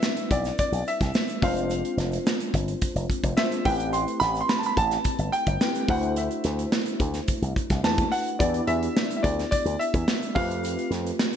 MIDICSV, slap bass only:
0, 0, Header, 1, 2, 480
1, 0, Start_track
1, 0, Tempo, 558659
1, 1460, Time_signature, 4, 2, 24, 8
1, 9762, End_track
2, 0, Start_track
2, 0, Title_t, "Slap bass"
2, 0, Program_c, 0, 36
2, 260, Note_on_c, 0, 35, 85
2, 428, Note_off_c, 0, 35, 0
2, 618, Note_on_c, 0, 35, 88
2, 703, Note_off_c, 0, 35, 0
2, 865, Note_on_c, 0, 36, 92
2, 947, Note_off_c, 0, 36, 0
2, 1223, Note_on_c, 0, 29, 96
2, 1558, Note_off_c, 0, 29, 0
2, 1693, Note_on_c, 0, 29, 99
2, 1863, Note_off_c, 0, 29, 0
2, 2181, Note_on_c, 0, 31, 90
2, 2348, Note_off_c, 0, 31, 0
2, 2536, Note_on_c, 0, 29, 78
2, 2621, Note_off_c, 0, 29, 0
2, 2777, Note_on_c, 0, 29, 97
2, 2861, Note_off_c, 0, 29, 0
2, 3136, Note_on_c, 0, 33, 96
2, 3473, Note_off_c, 0, 33, 0
2, 3616, Note_on_c, 0, 33, 91
2, 3785, Note_off_c, 0, 33, 0
2, 4095, Note_on_c, 0, 33, 97
2, 4264, Note_off_c, 0, 33, 0
2, 4455, Note_on_c, 0, 31, 91
2, 4541, Note_off_c, 0, 31, 0
2, 4698, Note_on_c, 0, 31, 94
2, 4782, Note_off_c, 0, 31, 0
2, 5056, Note_on_c, 0, 38, 96
2, 5393, Note_off_c, 0, 38, 0
2, 5537, Note_on_c, 0, 38, 100
2, 5706, Note_off_c, 0, 38, 0
2, 6012, Note_on_c, 0, 38, 94
2, 6182, Note_off_c, 0, 38, 0
2, 6375, Note_on_c, 0, 36, 78
2, 6460, Note_off_c, 0, 36, 0
2, 6617, Note_on_c, 0, 36, 84
2, 6702, Note_off_c, 0, 36, 0
2, 6730, Note_on_c, 0, 40, 104
2, 6901, Note_off_c, 0, 40, 0
2, 7216, Note_on_c, 0, 40, 117
2, 7385, Note_off_c, 0, 40, 0
2, 7452, Note_on_c, 0, 40, 109
2, 7623, Note_off_c, 0, 40, 0
2, 7935, Note_on_c, 0, 38, 99
2, 8104, Note_off_c, 0, 38, 0
2, 8293, Note_on_c, 0, 38, 80
2, 8379, Note_off_c, 0, 38, 0
2, 8539, Note_on_c, 0, 40, 83
2, 8623, Note_off_c, 0, 40, 0
2, 8899, Note_on_c, 0, 41, 98
2, 9235, Note_off_c, 0, 41, 0
2, 9369, Note_on_c, 0, 41, 99
2, 9540, Note_off_c, 0, 41, 0
2, 9762, End_track
0, 0, End_of_file